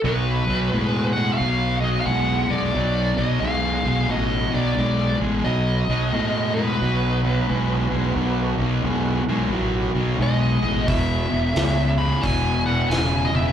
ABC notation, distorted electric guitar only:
X:1
M:4/4
L:1/8
Q:"Swing" 1/4=89
K:Bmix
V:1 name="Distorted electric guitar" clef=bass
[B,,F,] [B,,F,] [B,,G,] [B,,G,] [B,,F,] [B,,F,] [B,,G,] [B,,G,] | [B,,F,] [B,,F,] [B,,G,] [B,,G,] [B,,F,] [B,,F,] [B,,G,] [B,,G,] | [B,,F,] [B,,F,] [B,,G,] [B,,G,] [B,,F,] [B,,F,] [B,,G,] [B,,G,] | [B,,F,] [B,,F,] [B,,G,] [B,,G,] [B,,F,] [B,,F,] [B,,G,] [B,,G,] |
[E,,B,,] [E,,B,,] [E,,C,] [E,,C,] [E,,B,,] [E,,B,,] [E,,C,] [E,,C,] |]